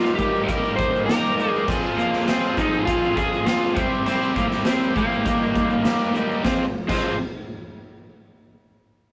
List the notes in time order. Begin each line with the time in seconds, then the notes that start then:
Already playing: D#3 G3 A#3 D#4 F4 G4
0.04 snare, shaker
0.15 D#3 G4, kick, shaker
0.20 G3 A#3 D#4 G4
0.35 shaker
0.44 D#3 A#4
0.48 G3 A#3 D#4 G4, kick, crash, shaker
0.65 shaker
0.76 C5, kick
0.80 shaker
0.96 shaker
1.06 D#3 G3 A#4, snare, crash
1.10 A#3 D#4 G4, shaker
1.38 D#3 G3 A#3 D#4 G4, shaker
1.50 G#4
1.56 shaker
1.68 F3 C4 F4 G#4, kick, crash, shaker
1.98 A#3, shaker
2.13 snare, shaker
2.27 F3 C4 F4 G#4, snare, crash, shaker
2.43 shaker
2.57 F3 C4 D#4 F4 G#4, kick, shaker
2.73 shaker
2.85 F3 C4 F4, kick, crash, shaker
2.89 G#4
3.03 shaker
3.16 G#4, kick, shaker
3.34 shaker
3.45 F3 C4 F4 G#4, snare, crash, shaker
3.62 shaker
3.74 C3 G3 C4 E4, kick, shaker
3.79 G4
3.93 shaker
4.06 C3 G3 C4 E4 G4, crash, shaker
4.23 shaker
4.36 A#3, kick, shaker
4.51 snare, shaker
4.64 C3 G3 C4 E4 G4, snare, crash, shaker
4.83 shaker
4.94 C3 G3 A#3 C4 E4 G4, kick, shaker
5.13 shaker
5.23 D#3 G3 A#3 D#4 G4, kick, crash, shaker
5.42 shaker
5.56 kick, shaker
5.71 shaker
5.84 D#3 G3 A#3 D#4 G4, snare, crash, shaker
6.00 shaker
6.13 D#3 G3 A#3 D#4 G4, shaker
6.31 shaker
6.43 F2 C3 F3 G#3 C4 F4, kick, snare, shaker
6.88 F2 C3 F3 G#3 C4 F4, kick, crash, shaker